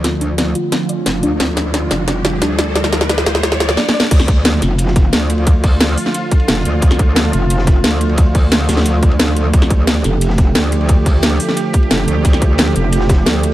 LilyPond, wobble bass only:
\new Staff \with { instrumentName = "Wobble bass" } { \clef bass \time 4/4 \key d \minor \tempo 4 = 177 d,4. r4. f,,8 d,8 | d,4. f,,4. d,4~ | d,4. d,4. r4 | d,4. f,,4. d,4~ |
d,4. r4. f,,8 d,8 | d,4. f,,4. d,4~ | d,4. d,2~ d,8 | d,4. f,,4. d,4~ |
d,4. r4. f,,8 d,8 | d,4. f,,4. d,4 | }